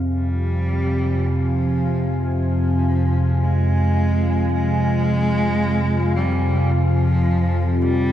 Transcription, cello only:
0.15 1.28 G3 medium
1.26 2.34 F3 medium
2.35 3.45 F3 medium
3.43 4.52 G#3 medium
4.52 6.18 G#3 loud
6.16 6.73 G3 medium
6.71 7.83 F3 medium
7.81 8.12 G3 medium

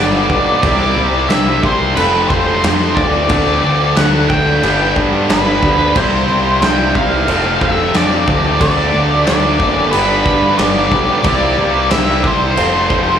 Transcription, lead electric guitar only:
0.00 0.61 D5 medium
0.62 1.32 D5 loud
1.29 1.64 E5 loud
1.63 1.95 C5 medium
1.95 2.28 B4 medium
2.29 2.95 C5 loud
2.95 3.99 D5 medium
3.96 4.29 F#5 loud
4.29 4.92 G5 medium
5.31 5.97 B4 medium
5.97 6.64 C5 loud
6.63 6.96 G5 loud
6.96 7.58 F5 loud
7.62 7.96 E5 loud
7.96 8.60 D5 loud
8.61 9.26 D5 loud
9.27 9.89 D5 loud
9.91 10.58 B4 medium
10.59 11.24 D5 loud
11.25 11.87 D5 loud
11.91 12.25 E5 loud
12.23 13.19 C5 medium

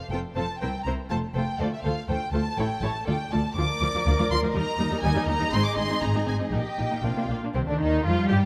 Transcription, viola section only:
0.12 0.20 C4 soft
0.12 0.20 F4 soft
0.36 0.45 C4 soft
0.36 0.44 F4 soft
0.61 0.69 C4 soft
0.61 0.69 E4 soft
0.86 0.94 C4 soft
0.86 0.95 E4 soft
1.11 1.19 A3 soft
1.11 1.19 F4 soft
1.36 1.45 A3 soft
1.36 1.44 F4 soft
1.62 1.70 A3 soft
1.62 1.70 F4 soft
1.87 1.95 A3 soft
1.87 1.95 F4 soft
2.10 2.18 A3 soft
2.10 2.18 F4 soft
2.33 2.41 A3 soft
2.33 2.41 F4 soft
2.58 2.66 A3 soft
2.58 2.67 E4 soft
2.81 2.89 A3 soft
2.81 2.90 E4 soft
3.07 3.15 A3 soft
3.07 3.15 F4 soft
3.32 3.40 A3 soft
3.32 3.40 F4 soft
3.57 3.62 F3 medium
3.57 3.62 F4 medium
3.82 3.86 F3 soft
3.82 3.87 F4 soft
3.94 3.99 F3 soft
3.94 3.99 F4 medium
4.06 4.11 F3 medium
4.06 4.11 F4 medium
4.18 4.23 F3 soft
4.18 4.23 F4 medium
4.31 4.35 F3 soft
4.31 4.35 F4 medium
4.43 4.47 F3 medium
4.43 4.47 F4 soft
4.54 4.59 G3 medium
4.54 4.59 D#4 medium
4.78 4.84 G3 medium
4.78 4.83 D#4 medium
4.90 4.95 G3 medium
4.90 4.95 D#4 soft
5.02 5.07 G3 medium
5.02 5.08 D#4 medium
5.14 5.19 G3 medium
5.14 5.20 D#4 medium
5.26 5.31 G3 medium
5.26 5.31 D#4 medium
5.39 5.45 G3 medium
5.39 5.44 D#4 medium
5.52 5.57 C4 medium
5.52 5.57 D#4 medium
5.76 5.81 C4 soft
5.76 5.81 D#4 medium
5.89 5.94 C4 soft
5.89 5.94 D#4 medium
6.01 6.06 C4 medium
6.01 6.06 D#4 medium
6.14 6.20 C4 soft
6.14 6.19 D#4 soft
6.26 6.31 C4 soft
6.26 6.32 D#4 medium
6.39 6.45 C4 soft
6.39 6.44 D#4 soft
6.51 6.57 A#3 medium
6.51 6.57 D#4 medium
6.78 6.83 A#3 soft
6.78 6.83 D#4 soft
6.90 6.96 A#3 soft
6.90 6.96 D#4 soft
7.03 7.08 A#3 medium
7.03 7.09 D4 soft
7.16 7.22 A#3 soft
7.16 7.22 D4 soft
7.30 7.35 A#3 soft
7.30 7.35 D4 soft
7.43 7.48 A#3 soft
7.43 7.48 D4 soft
7.55 7.60 C3 medium
7.69 7.81 D3 soft
7.80 8.05 D#3 medium
8.05 8.29 F3 medium
8.29 8.45 G3 medium

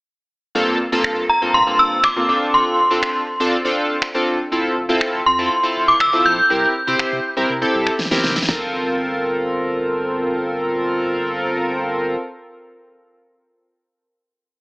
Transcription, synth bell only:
1.29 1.55 A#5 medium
1.54 1.80 C6 loud
1.79 2.05 E6 loud
2.04 2.55 D6 medium
2.54 3.98 C6 medium
5.26 5.90 C6 medium
5.88 6.00 D6 medium
6.01 6.26 E6 loud
6.26 7.95 G6 loud

